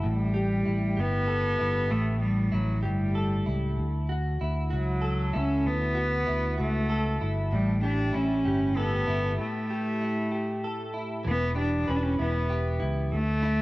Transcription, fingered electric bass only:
0.05 0.63 A1 medium
0.68 0.96 A1 medium
0.99 1.57 G1 medium
1.61 1.90 G1 medium
1.92 2.50 A1 medium
2.54 2.83 A1 medium
2.85 3.43 G1 medium
3.48 3.77 C#2 medium
3.78 4.37 D2 medium
4.41 4.70 D2 medium
4.73 5.31 C#2 medium
5.35 5.64 C#2 medium
5.66 6.24 D2 medium
6.29 6.57 D2 medium
6.60 7.18 C#2 medium
7.22 7.51 G1 medium
7.53 8.11 A1 medium
8.15 8.44 A1 medium
8.46 9.04 G1 medium
9.08 9.37 G1 medium
11.26 11.84 E1 medium
11.89 12.18 E1 medium
12.20 12.78 E1 medium
12.82 13.11 C#2 medium
13.13 13.62 D2 medium

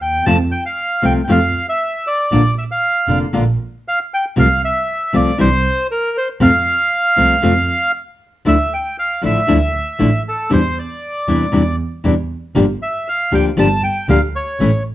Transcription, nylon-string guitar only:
0.26 0.36 C3 medium
0.26 0.36 F3 medium
0.26 0.36 A3 medium
0.26 0.36 C4 medium
0.26 0.36 F4 medium
1.02 1.20 C3 medium
1.02 1.20 F3 medium
1.02 1.20 A3 medium
1.02 1.20 C4 medium
1.02 1.21 F4 medium
1.28 1.38 C3 medium
1.28 1.38 F3 medium
1.28 1.38 A3 medium
1.28 1.38 C4 medium
1.28 1.39 F4 medium
2.32 2.41 D3 medium
2.32 2.41 A#3 medium
2.32 2.41 D4 medium
2.32 2.41 F4 medium
3.08 3.25 D3 medium
3.08 3.26 A#3 medium
3.08 3.26 D4 medium
3.08 3.26 F4 medium
3.33 3.43 D3 medium
3.33 3.43 A#3 medium
3.33 3.43 D4 medium
3.33 3.43 F4 medium
4.36 4.45 C3 medium
4.36 4.46 F3 medium
4.36 4.46 A3 medium
4.36 4.46 C4 medium
4.36 4.46 F4 medium
5.13 5.30 C3 medium
5.13 5.30 F3 medium
5.13 5.31 A3 medium
5.13 5.31 C4 medium
5.13 5.31 F4 medium
5.38 5.47 C3 medium
5.38 5.48 E3 medium
5.38 5.48 G3 medium
5.38 5.48 D4 medium
5.38 5.48 E4 medium
6.40 6.50 C3 medium
6.40 6.50 F3 medium
6.40 6.50 A3 medium
6.40 6.50 C4 medium
6.40 6.50 F4 medium
7.16 7.34 C3 medium
7.16 7.34 F3 medium
7.16 7.34 A3 soft
7.16 7.35 C4 medium
7.16 7.35 F4 medium
7.42 7.52 C3 medium
7.42 7.52 F3 medium
7.42 7.52 A3 medium
7.42 7.52 C4 medium
7.42 7.53 F4 medium
8.45 8.55 D3 medium
8.45 8.55 F3 medium
8.45 8.55 A3 medium
8.45 8.55 D4 medium
8.45 8.55 E4 medium
9.22 9.39 D3 soft
9.22 9.40 F3 medium
9.22 9.40 A3 soft
9.22 9.40 D4 medium
9.22 9.40 E4 medium
9.47 9.57 D3 medium
9.47 9.57 F3 medium
9.47 9.58 A3 medium
9.47 9.58 D4 medium
9.47 9.58 E4 medium
9.99 10.08 D3 medium
9.99 10.08 F3 medium
9.99 10.09 A3 medium
9.99 10.09 D4 medium
9.99 10.09 E4 medium
10.50 10.59 C3 medium
10.50 10.60 E3 medium
10.50 10.60 G3 medium
10.50 10.60 D4 medium
10.50 10.60 E4 medium
11.28 11.45 C3 soft
11.28 11.45 E3 medium
11.28 11.45 G3 medium
11.28 11.45 D4 medium
11.28 11.45 E4 medium
11.52 11.62 C3 medium
11.52 11.62 E3 medium
11.52 11.62 G3 medium
11.52 11.62 D4 medium
11.52 11.63 E4 medium
12.04 12.13 C3 medium
12.04 12.13 E3 medium
12.04 12.14 G3 medium
12.04 12.14 D4 medium
12.04 12.14 E4 medium
12.55 12.64 D3 medium
12.55 12.64 F3 medium
12.55 12.65 A#3 medium
12.55 12.65 D4 medium
12.55 12.65 G4 medium
13.32 13.49 D3 soft
13.32 13.49 F3 medium
13.32 13.49 A#3 medium
13.32 13.50 D4 medium
13.32 13.50 G4 medium
13.57 13.67 D3 medium
13.57 13.67 F3 medium
13.57 13.67 A#3 medium
13.57 13.67 D4 medium
13.57 13.67 G4 medium
14.08 14.18 D3 medium
14.08 14.18 F3 medium
14.08 14.18 A#3 medium
14.08 14.18 D4 medium
14.08 14.19 G4 medium
14.60 14.69 E3 medium
14.60 14.70 A3 medium
14.60 14.70 C#4 medium
14.60 14.70 E4 medium

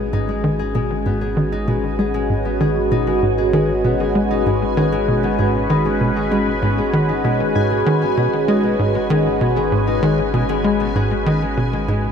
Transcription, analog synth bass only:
0.13 0.31 G#2 medium
0.44 0.62 D#3 loud
0.75 0.93 B2 medium
1.06 1.34 G#2 medium
1.37 1.55 D#3 loud
1.68 1.79 B2 medium
1.99 2.26 G#3 medium
2.29 2.48 G#2 medium
2.60 2.79 D#3 loud
2.91 3.10 B2 medium
3.22 3.50 G#2 medium
3.53 3.72 D#3 loud
3.84 3.95 B2 medium
4.15 4.43 G#3 medium
4.46 4.65 G#2 medium
4.77 4.96 D#3 loud
5.08 5.26 B2 medium
5.39 5.67 G#2 medium
5.70 5.88 D#3 loud
6.01 6.12 B2 medium
6.32 6.59 G#3 medium
6.62 6.81 G#2 medium
6.93 7.12 D#3 loud
7.24 7.43 B2 medium
7.55 7.83 G#2 medium
7.86 8.05 D#3 loud
8.17 8.28 B2 medium
8.48 8.76 G#3 medium
8.79 8.98 G#2 medium
9.10 9.29 D#3 loud
9.41 9.59 B2 medium
9.72 10.00 G#2 medium
10.03 10.21 D#3 loud
10.34 10.45 B2 medium
10.64 10.92 G#3 medium
10.95 11.14 G#2 medium
11.26 11.45 D#3 loud
11.57 11.76 B2 medium
11.88 12.12 G#2 medium

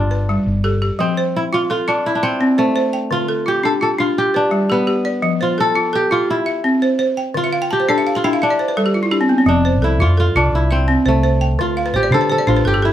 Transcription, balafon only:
0.00 0.11 G4 medium
0.11 0.64 B4 medium
0.29 0.64 G3 medium
0.64 0.81 G4 medium
0.64 1.17 A4 medium
0.82 1.17 G4 medium
0.99 1.34 F3 medium
1.17 1.70 C5 medium
1.53 1.86 F4 medium
1.70 2.23 A4 medium
1.88 2.05 F4 medium
2.23 2.76 E5 medium
2.41 2.76 C4 medium
2.58 2.74 C5 medium
2.76 3.29 C5 medium
2.93 3.29 G5 medium
3.11 3.46 D3 medium
3.29 3.81 A4 medium
3.46 3.80 F4 medium
3.63 3.97 D4 medium
3.81 4.34 F4 medium
3.99 4.16 D4 medium
4.34 4.87 B4 medium
4.51 4.87 G3 medium
4.70 4.86 G4 medium
4.87 5.23 G4 medium
5.05 5.40 D5 medium
5.22 5.58 F3 medium
5.41 5.93 C5 medium
5.58 5.92 A4 medium
5.76 6.10 F4 medium
5.93 6.46 A4 medium
6.11 6.29 F4 medium
6.46 6.99 E5 medium
6.64 6.99 C4 medium
6.82 6.98 C5 medium
6.99 7.34 C5 medium
7.17 7.52 G5 medium
7.34 7.70 D3 medium
7.44 7.60 E5 medium
7.53 7.69 F5 medium
7.62 7.78 G5 medium
7.71 7.87 A5 medium
7.80 7.96 C5 medium
7.89 8.23 D4 medium
7.89 8.04 D5 medium
7.98 8.13 E5 medium
8.07 8.22 F5 medium
8.15 8.31 A5 medium
8.24 8.41 D4 medium
8.24 8.40 G5 medium
8.33 8.49 F5 medium
8.42 8.58 E5 medium
8.50 8.66 D5 medium
8.59 8.75 C5 medium
8.68 8.84 B4 medium
8.77 9.12 G3 medium
8.77 8.93 A4 medium
8.86 9.02 G4 medium
8.94 9.10 F4 medium
9.03 9.19 E4 medium
9.11 9.28 D4 medium
9.11 9.47 G4 medium
9.21 9.37 C4 medium
9.29 9.45 B3 medium
9.38 9.54 C4 medium
9.46 9.82 F3 medium
9.65 10.17 C5 medium
9.82 10.16 A4 medium
10.00 10.35 F4 medium
10.17 10.70 A4 medium
10.36 10.53 F4 medium
10.71 11.23 E5 medium
10.88 11.23 C4 medium
11.06 11.22 C5 medium
11.23 11.59 C5 medium
11.41 11.76 G5 medium
11.59 11.94 D3 medium
11.77 11.93 F5 medium
11.86 12.02 B4 medium
11.94 12.10 C5 medium
12.03 12.19 D5 medium
12.12 12.46 D4 medium
12.12 12.28 C5 medium
12.21 12.37 B4 medium
12.30 12.46 C5 medium
12.38 12.55 D5 medium
12.47 12.65 D4 medium
12.47 12.63 C5 medium
12.56 12.73 B4 medium
12.65 12.81 A4 medium
12.74 12.90 G4 medium
12.82 12.93 A4 medium

